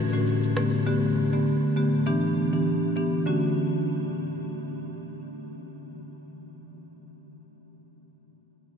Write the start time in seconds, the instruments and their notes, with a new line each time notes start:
0.13 marimba A2 D3 A3 C#4 F#4, shaker
0.27 shaker
0.43 shaker
0.56 marimba D3 A3 B3 G4, cross-stick, shaker
0.73 shaker
0.86 marimba D3 A3 B3 G4
1.33 marimba D3 A3 B3 G4
1.76 marimba D3 A3 B3 G4
2.06 marimba E3 B3 D4 G4
2.53 marimba E3 B3 D4 G4
2.96 marimba E3 B3 D4 G4
3.26 marimba D3 A3 C#4 F#4